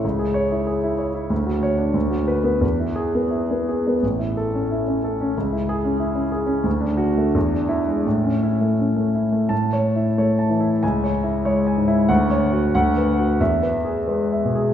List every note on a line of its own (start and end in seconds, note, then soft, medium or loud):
0.04 1.27 C#2 soft
0.19 0.45 G#4 soft
0.34 0.61 C#5 soft
0.52 0.77 E4 soft
0.67 0.93 G#4 soft
0.84 1.09 E4 soft
0.99 1.24 C#5 soft
1.14 1.30 E4 soft
1.30 1.92 D2 soft
1.47 1.72 F#4 soft
1.63 1.88 C#5 soft
1.78 1.95 D4 soft
1.94 2.60 D2 soft
2.10 2.38 F#4 soft
2.28 2.55 B4 soft
2.44 2.62 B3 soft
2.61 3.97 E2 soft
2.80 3.08 E4 soft
2.95 3.25 G#4 soft
3.15 3.43 B3 soft
3.31 3.60 E4 soft
3.51 3.78 B3 soft
3.69 3.96 G#4 soft
3.87 4.03 B3 soft
4.03 5.32 A1 soft
4.19 4.46 E4 soft
4.37 4.64 A4 soft
4.54 4.80 C#4 soft
4.71 4.97 E4 soft
4.88 5.13 C#4 soft
5.04 5.29 A4 soft
5.21 5.36 C#4 soft
5.37 6.63 C#2 soft
5.53 5.77 E4 soft
5.69 5.94 G#4 medium
5.84 6.09 C#4 soft
6.00 6.25 E4 soft
6.16 6.42 C#4 soft
6.32 6.59 G#4 soft
6.47 6.65 C#4 soft
6.64 7.32 D2 soft
6.81 7.09 D4 soft
6.97 7.27 F#4 medium
7.17 7.35 A3 soft
7.35 8.03 E2 soft
7.53 7.81 D4 soft
7.69 7.98 E4 medium
7.87 8.05 G#3 soft
8.06 9.47 A2 soft
8.24 8.53 C#4 soft
8.43 8.72 E4 soft
8.61 8.90 A3 soft
8.79 9.08 C#4 soft
8.96 9.26 A3 soft
9.15 9.44 E4 soft
9.32 9.50 A3 soft
9.49 10.78 A2 soft
9.49 9.87 A5 soft
9.73 10.09 C#5 soft
9.96 10.31 E4 soft
10.18 10.69 A3 soft
10.18 10.53 C#5 soft
10.39 10.73 A5 soft
10.50 10.82 E3 soft
10.60 10.82 E4 soft
10.83 12.06 C#2 medium
10.83 11.16 G#5 medium
11.04 11.37 C#5 soft
11.24 11.58 E4 soft
11.45 11.96 G#3 soft
11.45 11.79 C#5 soft
11.67 12.01 G#5 soft
11.77 12.09 G#2 soft
11.88 12.09 E4 soft
12.09 12.71 D2 medium
12.09 12.43 F#5 medium
12.30 12.65 C#5 soft
12.53 12.74 F#4 soft
12.75 13.38 D2 medium
12.75 13.09 F#5 medium
12.97 13.32 B4 soft
13.19 13.40 F#4 soft
13.40 14.74 E2 soft
13.40 13.76 E5 medium
13.63 13.99 B4 soft
13.85 14.21 G#4 soft
14.08 14.64 G#3 soft
14.08 14.45 B4 soft
14.32 14.70 E5 soft
14.45 14.74 B2 soft
14.55 14.74 G#4 soft